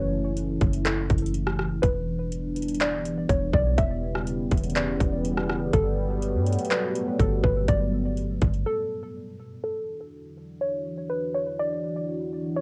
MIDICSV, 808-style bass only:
0, 0, Header, 1, 2, 480
1, 0, Start_track
1, 0, Key_signature, 2, "major"
1, 0, Tempo, 487805
1, 1801, Time_signature, 4, 2, 24, 8
1, 12410, End_track
2, 0, Start_track
2, 0, Title_t, "808-style bass"
2, 0, Program_c, 0, 38
2, 0, Note_on_c, 0, 30, 107
2, 572, Note_off_c, 0, 30, 0
2, 604, Note_on_c, 0, 30, 108
2, 1063, Note_off_c, 0, 30, 0
2, 1082, Note_on_c, 0, 30, 109
2, 1772, Note_off_c, 0, 30, 0
2, 1801, Note_on_c, 0, 28, 108
2, 3201, Note_off_c, 0, 28, 0
2, 3240, Note_on_c, 0, 28, 112
2, 3471, Note_off_c, 0, 28, 0
2, 3478, Note_on_c, 0, 35, 107
2, 3710, Note_off_c, 0, 35, 0
2, 3721, Note_on_c, 0, 28, 111
2, 4412, Note_off_c, 0, 28, 0
2, 4444, Note_on_c, 0, 28, 107
2, 4903, Note_off_c, 0, 28, 0
2, 4922, Note_on_c, 0, 28, 109
2, 5613, Note_off_c, 0, 28, 0
2, 5641, Note_on_c, 0, 31, 103
2, 6240, Note_on_c, 0, 43, 95
2, 6255, Note_off_c, 0, 31, 0
2, 6469, Note_off_c, 0, 43, 0
2, 7080, Note_on_c, 0, 31, 111
2, 7311, Note_off_c, 0, 31, 0
2, 7318, Note_on_c, 0, 31, 104
2, 7550, Note_off_c, 0, 31, 0
2, 7561, Note_on_c, 0, 31, 110
2, 8252, Note_off_c, 0, 31, 0
2, 8284, Note_on_c, 0, 31, 109
2, 8513, Note_off_c, 0, 31, 0
2, 12410, End_track
0, 0, End_of_file